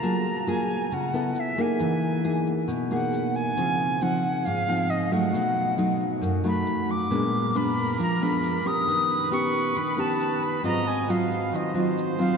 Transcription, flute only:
0.00 0.50 A#5 medium
0.49 0.95 G#5 medium
0.94 1.41 F#5 medium
1.40 1.63 E5 medium
1.62 2.48 G#5 medium
2.93 3.37 F#5 medium
3.36 4.04 G#5 loud
4.02 4.47 F#5 medium
4.45 4.92 F5 loud
4.90 5.14 D#5 medium
5.13 6.01 F#5 medium
6.47 6.92 B5 medium
6.91 7.58 D6 medium
7.57 8.00 B5 medium
8.02 8.25 A#5 medium
8.23 8.69 B5 medium
8.67 9.32 D#6 loud
9.32 9.79 C#6 medium
9.77 10.01 B5 medium
10.00 10.44 A5 medium
10.43 10.65 B5 medium
10.66 10.89 A#5 medium
10.88 11.12 G#5 medium
11.10 11.57 F5 medium
11.56 11.99 D#5 medium
12.21 12.37 F5 medium

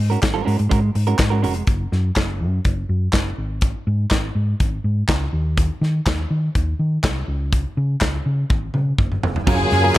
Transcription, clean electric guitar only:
0.10 0.20 G#3 soft
0.10 0.21 C#4 soft
0.10 0.21 F#4 soft
0.10 0.22 A#4 soft
0.21 muted clean electric guitar stroke soft
0.34 0.43 G#3 medium
0.34 0.44 C#4 medium
0.34 0.45 F#4 medium
0.34 0.45 A#4 medium
0.45 0.61 G#3 medium
0.45 0.59 C#4 medium
0.45 0.58 F#4 medium
0.45 0.58 A#4 medium
0.59 muted clean electric guitar stroke medium
0.69 0.90 G#3 medium
0.69 0.82 C#4 medium
0.69 0.82 F#4 medium
0.69 0.81 A#4 medium
0.82 muted clean electric guitar stroke soft
0.94 muted clean electric guitar stroke soft
1.07 1.17 G#3 medium
1.07 1.18 C#4 medium
1.07 1.18 F#4 medium
1.07 1.19 A#4 medium
1.30 1.41 G#3 soft
1.30 1.42 C#4 medium
1.30 1.43 F#4 medium
1.30 1.43 A#4 medium
1.42 1.63 G#3 medium
1.42 1.56 C#4 medium
1.42 1.56 F#4 medium
1.42 1.55 A#4 medium
1.56 muted clean electric guitar stroke medium
9.47 9.67 F#3 loud
9.47 9.60 C#4 medium
9.47 9.60 F4 medium
9.47 9.59 A#4 medium
9.60 muted clean electric guitar stroke soft
9.72 muted clean electric guitar stroke soft
9.84 9.98 F#3 soft
9.84 9.98 C#4 medium
9.84 9.98 F4 medium
9.84 9.98 A#4 medium

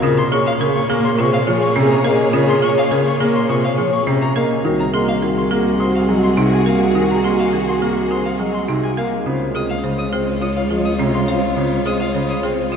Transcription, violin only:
0.17 0.28 C6 medium
0.32 0.42 C#6 medium
0.46 0.57 F5 loud
0.75 0.86 C#6 medium
1.04 1.15 C6 medium
1.19 1.29 C#6 medium
1.33 1.44 F5 loud
1.62 1.72 C#6 medium
1.91 2.01 A#5 medium
2.05 2.16 F5 medium
2.48 2.59 C6 medium
2.62 2.73 C#6 loud
2.77 2.88 F5 medium
3.06 3.17 C#6 medium
3.35 3.46 C6 medium
3.49 3.60 C#6 medium
3.64 3.74 F5 medium
3.92 4.03 C#6 medium
4.21 4.32 A#5 medium
4.36 4.46 F5 medium
4.79 4.90 A#5 medium
4.93 5.04 C6 medium
5.08 5.19 F5 medium
5.37 5.47 C6 medium
5.80 5.91 C6 medium
5.94 6.05 F5 medium
6.23 6.34 C6 medium
6.52 6.63 G#5 medium
6.67 6.77 F5 medium
7.10 7.21 A#5 medium
7.24 7.35 C6 medium
7.39 7.50 F5 medium
7.68 7.78 C6 medium
8.11 8.21 C6 medium
8.25 8.36 F5 medium
8.54 8.65 C6 medium
8.83 8.93 G#5 medium
8.97 9.08 F5 medium
9.55 9.65 D#6 medium
9.69 9.80 F5 medium
9.98 10.09 D#6 medium
10.41 10.52 D#6 medium
10.56 10.67 F5 medium
10.85 10.96 D#6 medium
11.14 11.24 C6 medium
11.28 11.39 F5 medium
11.86 11.96 D#6 medium
12.00 12.11 F5 medium
12.29 12.40 D#6 medium
12.72 12.77 D#6 medium

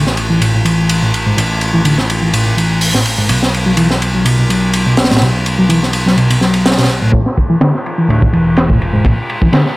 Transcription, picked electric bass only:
0.00 1.35 A1 medium
1.37 3.27 A1 medium
3.30 5.19 B1 medium
5.21 7.11 B1 medium
7.13 7.22 A1 medium
8.09 8.25 D2 medium
8.33 8.99 E1 medium
9.05 9.13 A1 medium

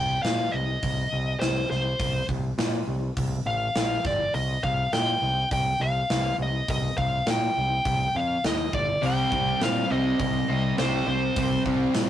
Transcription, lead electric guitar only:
0.00 0.22 G5 loud
0.22 0.53 F5 loud
0.51 1.40 D#5 medium
1.40 1.68 C5 medium
1.71 2.25 C5 medium
3.47 4.06 F5 loud
4.06 4.34 D5 medium
4.35 4.63 D#5 loud
4.64 4.91 F5 loud
4.93 5.47 G5 loud
5.53 5.82 G5 medium
5.81 6.35 F5 medium
6.42 6.68 D#5 medium
6.71 6.97 D#5 loud
6.98 7.28 F5 loud
7.30 8.19 G5 loud
8.16 8.43 F5 medium
8.47 8.74 D#5 medium
8.74 9.04 D5 medium
9.06 9.64 G5 loud
9.63 9.89 F5 loud
9.92 10.75 D#5 medium
10.79 11.06 C5 medium
11.08 11.62 C5 medium

